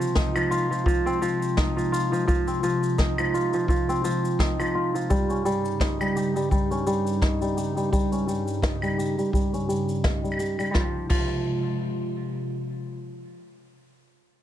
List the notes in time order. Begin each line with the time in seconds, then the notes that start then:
Already playing: C3 F3 G#3 A#3 C4 F4 G4 A#4
0.02 cabasa
0.15 D#4, kick, snare, cabasa
0.35 F3, cabasa, claves
0.51 F4, cabasa
0.71 F3, cabasa
0.86 F3, kick, cabasa
1.06 C4, cabasa
1.22 F3, cabasa
1.42 cabasa
1.57 D#4, kick, snare, cabasa
1.77 F3, cabasa
1.92 F4, cabasa
2.12 F3, cabasa
2.27 F3, kick, cabasa
2.47 C4, cabasa
2.63 F3, cabasa
2.83 cabasa
2.98 D#4, kick, snare, cabasa
3.18 F3, cabasa, claves
3.34 F4, cabasa
3.53 F3, cabasa
3.68 F3, kick, cabasa
3.89 C4, cabasa
4.04 F3, cabasa
4.25 cabasa
4.39 D#4, kick, snare, cabasa
4.59 F3, cabasa, claves
4.75 F4
4.95 F3, cabasa
5.10 G2 C#3 G3 D#4, kick, cabasa
5.30 C#4, cabasa
5.45 G3, cabasa
5.65 cabasa
5.80 D#4, kick, snare, cabasa
6.00 G3, cabasa, claves
6.16 G4, cabasa
6.36 G3, cabasa
6.51 G3, kick, cabasa
6.71 C#4, cabasa
6.87 G3, cabasa
7.07 cabasa
7.22 D#4, kick, snare, cabasa
7.42 G3, cabasa
7.57 G4, cabasa
7.77 G3, cabasa
7.92 G3, kick, cabasa
8.12 C#4, cabasa
8.27 G3, cabasa
8.48 cabasa
8.62 D#4, kick, snare, cabasa
8.82 G3, cabasa, claves
8.98 G4, cabasa
9.18 G3, cabasa
9.33 G3, kick, cabasa
9.53 C#4, cabasa
9.69 G3, cabasa
9.89 cabasa
10.04 D#4, kick, snare, cabasa
10.24 G3, cabasa
10.32 claves
10.39 G4, cabasa
10.59 G3, cabasa, claves
10.74 C3 F3 G#3 F4, kick, snare
11.10 F3, kick, crash